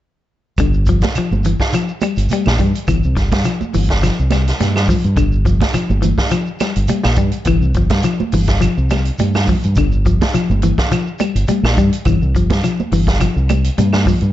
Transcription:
0.58 fingered electric bass G1, clean electric guitar D3, kick, closed hi-hat, high conga, claves, shekere
0.74 shekere
0.86 clean electric guitar F3, kick, closed hi-hat, shekere
1.01 kick, snare, closed hi-hat, high conga, shekere
1.15 clean electric guitar F3, muted fingered electric bass stroke, closed hi-hat, high conga, claves, shekere
1.31 fingered electric bass G1, high conga, shekere
1.44 clean electric guitar E3, closed hi-hat, low conga, shekere
1.59 kick, snare, shekere
1.73 clean electric guitar F3, closed hi-hat, high conga, claves, shekere
1.88 shekere
2.01 clean electric guitar G3, closed hi-hat, high conga, claves, shekere
2.16 fingered electric bass G1, closed hi-hat, shekere
2.29 clean electric guitar G3, muted fingered electric bass stroke, closed hi-hat, high conga, shekere
2.45 fingered electric bass A#1, snare, high conga, claves, shekere
2.59 fingered electric bass G2, clean electric guitar G3, kick, closed hi-hat, low conga, shekere
2.74 closed hi-hat, shekere
2.88 fingered electric bass G1, clean electric guitar E3, kick, closed hi-hat, high conga, claves, shekere
3.03 fingered electric bass C2, shekere
3.17 fingered electric bass G1, muted clean electric guitar stroke, kick, snare, closed hi-hat, shekere
3.32 fingered electric bass G2, kick, snare, closed hi-hat, high conga, shekere
3.44 clean electric guitar F3, closed hi-hat, high conga, claves, shekere
3.61 muted fingered electric bass stroke, high conga, shekere
3.74 fingered electric bass G1, clean electric guitar E3, open hi-hat, low conga, shekere
3.89 kick, snare, closed hi-hat, shekere
4.03 clean electric guitar F3, snare, closed hi-hat, high conga, claves, shekere
4.19 fingered electric bass C2, shekere
4.31 clean electric guitar G3, snare, closed hi-hat, high conga, claves, shekere
4.48 snare, closed hi-hat, shekere
4.60 fingered electric bass G2, clean electric guitar G3, snare, closed hi-hat, high conga, shekere
4.76 snare, claves, shekere
4.88 clean electric guitar F3, kick, open hi-hat, low conga, shekere
5.04 fingered electric bass G2, closed hi-hat, shekere
5.16 fingered electric bass G1, clean electric guitar D3, kick, closed hi-hat, high conga, claves, shekere
5.32 shekere
5.45 clean electric guitar F3, kick, closed hi-hat, shekere
5.61 kick, snare, closed hi-hat, high conga, shekere
5.74 clean electric guitar F3, muted fingered electric bass stroke, closed hi-hat, high conga, claves, shekere
5.90 fingered electric bass G1, high conga, shekere
6.02 clean electric guitar E3, closed hi-hat, high conga, low conga, shekere
6.18 kick, snare, shekere
6.31 clean electric guitar F3, closed hi-hat, high conga, claves, shekere
6.47 shekere
6.60 clean electric guitar G3, snare, closed hi-hat, high conga, claves, shekere
6.76 fingered electric bass G1, closed hi-hat, shekere
6.88 clean electric guitar G3, closed hi-hat, high conga, shekere
7.03 fingered electric bass A#1, snare, claves, shekere
7.16 fingered electric bass G2, clean electric guitar G3, kick, closed hi-hat, low conga, shekere
7.32 closed hi-hat, shekere
7.45 fingered electric bass G1, clean electric guitar E3, kick, closed hi-hat, high conga, claves, shekere
7.60 fingered electric bass C2, shekere
7.74 fingered electric bass G1, clean electric guitar F3, kick, closed hi-hat, shekere
7.90 fingered electric bass G2, kick, snare, closed hi-hat, high conga, shekere
8.03 clean electric guitar F3, closed hi-hat, high conga, claves, shekere
8.19 muted fingered electric bass stroke, high conga, shekere
8.32 fingered electric bass G1, clean electric guitar E3, open hi-hat, high conga, low conga, shekere
8.47 kick, snare, closed hi-hat, shekere
8.61 clean electric guitar F3, closed hi-hat, high conga, claves, shekere
8.77 fingered electric bass C2, shekere
8.90 clean electric guitar G3, snare, closed hi-hat, high conga, claves, shekere
9.05 closed hi-hat, shekere
9.18 fingered electric bass G2, clean electric guitar G3, closed hi-hat, high conga, shekere
9.34 snare, high conga, claves, shekere
9.47 clean electric guitar F3, kick, open hi-hat, low conga, shekere
9.63 fingered electric bass G2, closed hi-hat, shekere
9.76 fingered electric bass G1, clean electric guitar D3, kick, closed hi-hat, high conga, claves, shekere
9.92 shekere
10.06 clean electric guitar F3, kick, closed hi-hat, shekere
10.21 kick, snare, closed hi-hat, high conga, shekere
10.34 clean electric guitar F3, muted fingered electric bass stroke, closed hi-hat, high conga, claves, shekere
10.50 fingered electric bass G1, high conga, shekere
10.62 clean electric guitar E3, closed hi-hat, high conga, low conga, shekere
10.78 kick, snare, shekere
10.91 clean electric guitar F3, closed hi-hat, high conga, claves, shekere
11.07 shekere
11.19 clean electric guitar G3, closed hi-hat, high conga, claves, shekere
11.35 fingered electric bass G1, closed hi-hat, shekere
11.48 clean electric guitar G3, closed hi-hat, high conga, shekere
11.63 fingered electric bass A#1, snare, claves, shekere
11.77 fingered electric bass G2, clean electric guitar G3, kick, closed hi-hat, low conga, shekere
11.93 closed hi-hat, shekere
12.05 fingered electric bass G1, clean electric guitar E3, kick, closed hi-hat, high conga, claves, shekere
12.22 fingered electric bass C2, shekere
12.35 fingered electric bass G1, clean electric guitar F3, kick, closed hi-hat, shekere
12.50 fingered electric bass G2, kick, snare, closed hi-hat, high conga, shekere
12.64 clean electric guitar F3, closed hi-hat, high conga, claves, shekere
12.80 muted fingered electric bass stroke, high conga, shekere
12.92 fingered electric bass G1, clean electric guitar E3, open hi-hat, low conga, shekere
13.07 kick, snare, closed hi-hat, shekere
13.20 clean electric guitar F3, closed hi-hat, high conga, claves, shekere
13.36 fingered electric bass C2, shekere
13.49 clean electric guitar G3, closed hi-hat, high conga, claves, shekere
13.64 closed hi-hat, shekere
13.78 fingered electric bass G2, clean electric guitar G3, closed hi-hat, high conga, shekere
13.93 snare, high conga, claves, shekere
14.06 clean electric guitar F3, kick, open hi-hat, low conga, shekere
14.21 fingered electric bass G2, closed hi-hat, shekere

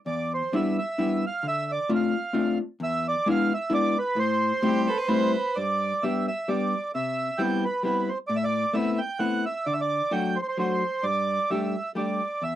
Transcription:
0.06 hollow-body jazz guitar E2, accordion D5
0.34 accordion C5
0.53 hollow-body jazz guitar G3 B3 D4 E4, accordion E5
0.78 accordion E5
0.98 hollow-body jazz guitar G3 B3 D4 E4
1.27 accordion F5
1.43 hollow-body jazz guitar D3
1.48 accordion E5
1.72 accordion D5
1.89 hollow-body jazz guitar A3 C4 D4 F4
1.95 accordion F5
2.33 hollow-body jazz guitar A3 C4 D4 F4
2.80 hollow-body jazz guitar E2, accordion E5
3.08 accordion D5
3.26 hollow-body jazz guitar G#3 B3 D4 E4, accordion F5
3.54 accordion E5
3.70 hollow-body jazz guitar G#3 B3 D4 E4
3.74 accordion D5
3.99 accordion B4
4.16 hollow-body jazz guitar A2, accordion C5
4.62 hollow-body jazz guitar G3 A3 C4 E4, violin G4
4.87 violin A4, accordion B4
4.98 violin B4
5.08 hollow-body jazz guitar G3 A3 C4 E4, accordion B4, violin C5
5.56 hollow-body jazz guitar G2, accordion D5
6.03 hollow-body jazz guitar G3 B3 D4 G4, accordion E5
6.28 accordion E5
6.48 hollow-body jazz guitar G3 B3 D4 G4, accordion D5
6.95 hollow-body jazz guitar C3, accordion E5
7.38 hollow-body jazz guitar G3 B3 C4 E4, accordion G5
7.65 accordion B4
7.83 hollow-body jazz guitar G3 B3 C4 E4, accordion B4
8.09 accordion C5
8.28 hollow-body jazz guitar A2, accordion D5
8.36 accordion E5
8.44 accordion D5
8.73 hollow-body jazz guitar A3 B3 C4 E4, accordion E5
8.98 accordion G5
9.19 hollow-body jazz guitar A3 B3 C4 E4, accordion F#5
9.46 accordion E5
9.66 hollow-body jazz guitar D3, accordion D5
9.74 accordion E5
9.81 accordion D5
10.11 hollow-body jazz guitar F#3 A3 D4 F#4, accordion G5
10.36 accordion C5
10.42 accordion C5
10.48 accordion C5
10.58 hollow-body jazz guitar F#3 A3 D4 F#4, accordion C5
11.03 hollow-body jazz guitar G2, accordion D5
11.50 hollow-body jazz guitar G3 A3 D4 G4, accordion E5
11.95 hollow-body jazz guitar G3 A3 D4 G4, accordion D5
12.42 hollow-body jazz guitar E2, accordion E5

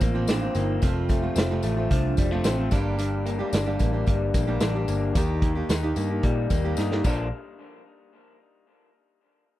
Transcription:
Already playing: clean electric guitar F3 C4, steel-string acoustic guitar A#3 C4 F4, vibraphone A#3
0.01 picked electric bass A1, clean electric guitar A#3, kick, closed hi-hat, tambourine
0.14 steel-string acoustic guitar A#2 F3 A#3 C4 F4
0.27 clean electric guitar C4, vibraphone D4, snare, closed hi-hat, tambourine
0.41 steel-string acoustic guitar A#3 C4 F4
0.55 picked electric bass G1, clean electric guitar A#3, vibraphone D#4, closed hi-hat, tambourine
0.82 picked electric bass F1, clean electric guitar F2, steel-string acoustic guitar F3 A3 C4 F4, vibraphone F4, kick, closed hi-hat, tambourine
1.09 clean electric guitar A3, kick, closed hi-hat, tambourine
1.22 steel-string acoustic guitar F3 A3 C4 F4
1.36 picked electric bass F1, clean electric guitar C4, snare, closed hi-hat, tambourine
1.50 steel-string acoustic guitar F2 C3 F3 A3 C4 F4
1.63 picked electric bass A1, clean electric guitar A3, closed hi-hat, tambourine
1.77 steel-string acoustic guitar F3 A3 C4 F4
1.91 picked electric bass C2, clean electric guitar F3, vibraphone D4, kick, closed hi-hat
2.17 picked electric bass F1, clean electric guitar G3, kick, closed hi-hat, tambourine
2.31 steel-string acoustic guitar F2 C3 F3 A3 C4 F4, clean electric guitar A3
2.44 picked electric bass A1, clean electric guitar C4, vibraphone C4, snare, closed hi-hat, tambourine
2.58 steel-string acoustic guitar F3 A3 C4 F4
2.71 picked electric bass G1, steel-string acoustic guitar G2 D3 G3 A#3 D4 G4, clean electric guitar G2, vibraphone A#3, kick, closed hi-hat, tambourine
2.99 clean electric guitar G2, closed hi-hat, tambourine
3.26 clean electric guitar A#3, closed hi-hat, tambourine
3.39 steel-string acoustic guitar G3 A#3 D4 G4
3.53 picked electric bass G1, clean electric guitar D4, snare, closed hi-hat, tambourine
3.66 steel-string acoustic guitar G2 D3 G3 A#3 D4 G4
3.79 picked electric bass A1, clean electric guitar A#3, kick, closed hi-hat, tambourine
3.93 steel-string acoustic guitar G3 A#3 D4 G4
4.06 picked electric bass G1, clean electric guitar G3, kick, closed hi-hat, tambourine
4.34 picked electric bass A#1, clean electric guitar A#3, kick, closed hi-hat, tambourine
4.47 steel-string acoustic guitar G2 D3 G3 A#3 D4 G4
4.60 picked electric bass A1, clean electric guitar D4, snare, closed hi-hat, tambourine
4.75 steel-string acoustic guitar G3 A#3 D4 G4
4.88 picked electric bass G1, clean electric guitar A#3, closed hi-hat, tambourine
5.15 picked electric bass D#2, steel-string acoustic guitar D#3 A#3 D#4 G4, clean electric guitar D#3, kick, closed hi-hat, tambourine
5.42 clean electric guitar A#3, kick, closed hi-hat
5.55 steel-string acoustic guitar A#3 D#4 G4
5.69 picked electric bass D#2, clean electric guitar D#4, snare, closed hi-hat, tambourine
5.83 steel-string acoustic guitar D#3 A#3 D#4 G4
5.96 picked electric bass G2, clean electric guitar A#3, closed hi-hat, tambourine
6.10 steel-string acoustic guitar A#3 D#4 G4
6.23 picked electric bass A#2, clean electric guitar G3, kick, closed hi-hat
6.50 picked electric bass D#2, clean electric guitar A#3, kick, closed hi-hat, tambourine
6.64 steel-string acoustic guitar D#3 A#3 D#4 G4
6.77 picked electric bass G2, clean electric guitar D#4, snare, tambourine
6.91 steel-string acoustic guitar A#3 D#4 G4, snare
7.04 picked electric bass A#1, clean electric guitar A#2 D3 F3 A#3 D4, steel-string acoustic guitar A#2 F3 A#3 D4 F4, kick, crash, tambourine

